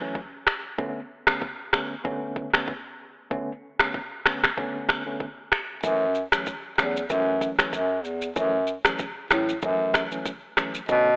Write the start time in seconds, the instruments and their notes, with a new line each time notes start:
0.01 tine electric piano E3 F#3 A3 C#4
0.15 kick
0.47 finger snap, cross-stick
0.78 tine electric piano D3 A3 B3 C#4, kick
1.27 tine electric piano D3 A3 B3 C#4, finger snap, cross-stick
1.42 kick
1.73 tine electric piano D3 A3 B3 C#4, finger snap, cross-stick
2.04 tine electric piano D3 A3 B3 C#4, kick
2.36 kick
2.53 tine electric piano D3 A3 B3 C#4, finger snap, cross-stick
2.68 kick
3.31 tine electric piano D3 A3 B3 C#4, kick
3.80 tine electric piano D3 A3 B3 C#4, finger snap, cross-stick
3.94 kick
4.25 tine electric piano D3 A3 B3 C#4, finger snap, cross-stick
4.44 finger snap, cross-stick
4.57 tine electric piano D3 A3 B3 C#4, kick
4.89 finger snap, kick, cross-stick
5.06 tine electric piano D3 A3 B3 C#4
5.20 kick
5.52 finger snap, cross-stick
5.83 bass clarinet F#2, tine electric piano E3 F#3 A3 C#4, kick, shaker
6.15 shaker
6.32 tine electric piano E3 F#3 A3 C#4, finger snap, cross-stick, shaker
6.46 kick, shaker
6.78 bass clarinet E2, tine electric piano E3 F#3 A3 C#4, finger snap, cross-stick, shaker
6.97 shaker
7.10 bass clarinet F#2, tine electric piano E3 F#3 A3 C#4, kick, shaker
7.41 kick, shaker
7.58 tine electric piano E3 F#3 A3 C#4, finger snap, cross-stick, shaker
7.73 bass clarinet F#2, kick, shaker
8.05 bass clarinet E2, shaker
8.22 shaker
8.36 bass clarinet F#2, tine electric piano E3 F#3 A3 C#4, kick, shaker
8.67 shaker
8.85 tine electric piano E3 F#3 A3 C#4, finger snap, cross-stick, shaker
8.99 kick, shaker
9.31 bass clarinet A2, tine electric piano E3 F#3 A3 C#4, finger snap, cross-stick, shaker
9.49 shaker
9.62 bass clarinet F#2, tine electric piano E3 F#3 A3 C#4, kick, shaker
9.94 finger snap, kick, cross-stick, shaker
10.11 tine electric piano E3 F#3 A3 C#4, shaker
10.26 kick, shaker
10.57 tine electric piano E3 F#3 A3 C#4, finger snap, cross-stick, shaker
10.74 shaker
10.89 bass clarinet B2, tine electric piano D3 A3 B3 C#4, kick, shaker